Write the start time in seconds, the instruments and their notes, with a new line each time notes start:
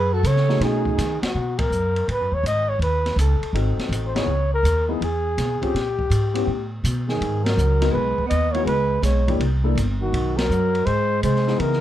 Already playing: upright bass F#2, alto saxophone G#4, flugelhorn B4
0.13 alto saxophone F#4, flugelhorn A4
0.23 upright bass C#3, alto saxophone A4, flugelhorn C#5, hi-hat pedal, ride
0.36 snare
0.48 grand piano A3 C#4 D#4 F#4 G#4, snare
0.60 upright bass B2, alto saxophone D#4, flugelhorn G#4, snare, ride
0.85 kick
0.98 upright bass D#3, snare, hi-hat pedal, ride
1.22 flugelhorn F#4, muted upright bass stroke, snare, ride
1.35 upright bass B2
1.59 flugelhorn A#4, kick, ride
1.70 upright bass F#2, hi-hat pedal
1.96 ride
2.08 upright bass G#2, flugelhorn B4, ride
2.21 upright bass F#2
2.32 upright bass D#2, flugelhorn C#5
2.43 upright bass G#1, flugelhorn D#5, hi-hat pedal, ride
2.69 flugelhorn C#5
2.79 upright bass D#2, flugelhorn B4, ride
3.06 snare, ride
3.16 upright bass C#2, flugelhorn A4, hi-hat pedal, ride
3.41 muted upright bass stroke, ride
3.53 upright bass G#1, grand piano C4 D#4 F#4 A4, ride
3.77 muted upright bass stroke, snare, ride
3.89 upright bass A1, hi-hat pedal, ride
4.06 flugelhorn C5
4.15 grand piano B3 D#4 E4 G#4, flugelhorn C#5, snare, ride
4.26 upright bass C#2
4.54 flugelhorn A#4
4.63 upright bass D#2, hi-hat pedal, ride
4.88 grand piano B3 D#4 E4 G#4
5.01 upright bass E2, flugelhorn G#4, ride
5.38 upright bass B2, snare, hi-hat pedal, ride
5.61 grand piano C4 C#4 F4 G#4, flugelhorn G4, muted upright bass stroke, kick, ride
5.74 upright bass A#2, snare, ride
5.99 kick
6.10 upright bass G#2, hi-hat pedal, ride
6.34 grand piano B3 C#4 E4 G4, ride
6.47 upright bass A2
6.84 upright bass B2, hi-hat pedal, ride
7.08 alto saxophone D#3, flugelhorn G#4, snare
7.20 upright bass G#2, ride
7.43 alto saxophone F#3, flugelhorn A#4, snare, ride
7.57 upright bass C#2, hi-hat pedal
7.81 grand piano B3 D#4 F#4 A#4, snare, ride
7.91 alto saxophone G#3, flugelhorn B4
7.95 upright bass B1
8.18 muted upright bass stroke, kick
8.26 alto saxophone B3, flugelhorn D#5
8.30 upright bass D#2, hi-hat pedal, ride
8.51 alto saxophone A#3, grand piano B3 D#4, flugelhorn C#5, ride
8.55 grand piano E4 F#4
8.63 upright bass C#2, alto saxophone G#3
8.67 flugelhorn B4, ride
9.01 upright bass B1, alto saxophone G#3, flugelhorn C#5, snare, hi-hat pedal, ride
9.28 grand piano A#3 D4 E4 G4, kick, ride
9.40 upright bass C2, ride
9.64 grand piano A#3 D4 E4 A4
9.75 upright bass G1, hi-hat pedal, ride
10.01 alto saxophone D#3, flugelhorn F#4
10.13 upright bass B1, ride
10.37 alto saxophone F#3, flugelhorn A#4, snare, ride
10.49 upright bass F#2, hi-hat pedal
10.75 ride
10.86 upright bass G#2, alto saxophone G#3, flugelhorn C5, ride
11.23 upright bass C3, alto saxophone G#3, flugelhorn C5, hi-hat pedal, ride
11.36 snare
11.47 grand piano B3 D#4 E4 G#4, snare
11.59 upright bass C#3, alto saxophone E3, flugelhorn A#4, ride
11.72 snare